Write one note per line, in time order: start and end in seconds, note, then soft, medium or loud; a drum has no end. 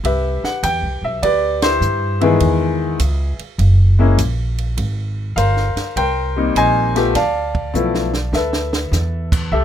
0.04 0.41 C2 medium
0.04 1.19 G4 medium
0.04 1.19 B4 medium
0.04 0.45 E5 medium
0.04 kick soft
0.04 ride medium
0.43 0.64 F#5 medium
0.43 muted upright bass stroke soft
0.43 snare medium
0.63 0.84 E2 medium
0.63 1.00 G5 loud
0.63 kick soft
0.63 hi-hat pedal medium
0.63 ride medium
0.82 1.01 C2 soft
1.02 1.20 B1 medium
1.02 1.22 E5 medium
1.22 1.80 D2 medium
1.22 1.63 G4 medium
1.22 2.22 B4 medium
1.22 1.63 D5 medium
1.22 kick soft
1.22 ride medium
1.62 2.38 E4 medium
1.62 2.38 G4 medium
1.62 2.18 C5 medium
1.62 snare medium
1.62 ride medium
1.81 2.38 G2 medium
1.81 hi-hat pedal medium
2.21 2.97 D#3 medium
2.21 2.96 E3 medium
2.21 2.96 G#3 medium
2.21 2.97 B3 medium
2.21 3.37 G#4 medium
2.21 3.37 B4 soft
2.21 3.36 E5 medium
2.21 ride soft
2.40 2.98 E2 medium
2.40 kick soft
2.40 ride medium
2.99 3.37 C#2 medium
2.99 kick soft
2.99 hi-hat pedal medium
2.99 ride medium
3.39 muted upright bass stroke soft
3.39 ride soft
3.58 4.16 F#1 medium
3.58 kick soft
3.58 ride medium
3.99 4.16 G#3 medium
3.99 4.17 A#3 medium
3.99 4.17 C#4 medium
3.99 4.17 E4 medium
4.18 4.76 A#1 medium
4.18 kick soft
4.18 hi-hat pedal medium
4.18 ride medium
4.58 ride soft
4.77 5.35 G#1 medium
4.77 kick soft
4.77 ride medium
5.36 5.74 G1 medium
5.36 5.96 A#4 medium
5.36 5.96 C5 medium
5.36 5.98 F5 medium
5.36 kick soft
5.36 hi-hat pedal medium
5.36 ride medium
5.57 snare soft
5.75 muted upright bass stroke soft
5.75 snare soft
5.75 ride soft
5.96 6.54 C2 medium
5.96 7.12 A#4 medium
5.96 6.56 C5 medium
5.96 6.58 G5 medium
5.96 kick soft
5.96 ride medium
6.36 6.91 G3 medium
6.36 6.92 A#3 medium
6.36 6.92 C4 soft
6.36 6.92 D#4 medium
6.55 7.13 A#1 medium
6.55 7.12 C5 medium
6.55 7.12 D#5 medium
6.55 7.17 G#5 loud
6.55 kick soft
6.55 hi-hat pedal medium
6.55 ride medium
6.95 7.13 F3 medium
6.95 7.13 A3 medium
6.95 7.14 B3 medium
6.95 7.14 G4 medium
6.95 snare soft
6.95 ride soft
7.15 7.72 D2 medium
7.15 8.30 D5 medium
7.15 8.30 F5 medium
7.15 8.30 A5 medium
7.15 kick soft
7.15 snare soft
7.15 ride medium
7.55 kick medium
7.74 8.31 B1 medium
7.74 8.10 F3 medium
7.74 8.10 A3 medium
7.74 8.10 B3 medium
7.74 8.11 E4 medium
7.74 hi-hat pedal medium
7.95 snare medium
8.14 snare medium
8.33 8.90 D2 medium
8.33 9.49 A4 medium
8.33 9.49 B4 medium
8.33 9.29 E5 medium
8.33 snare medium
8.53 snare medium
8.73 snare medium
8.92 9.50 E2 medium
8.92 snare medium
8.92 hi-hat pedal medium
9.32 kick medium
9.32 crash medium
9.52 9.64 C2 medium
9.52 9.64 G4 medium
9.52 9.64 A4 medium
9.52 9.64 E5 medium
9.52 kick soft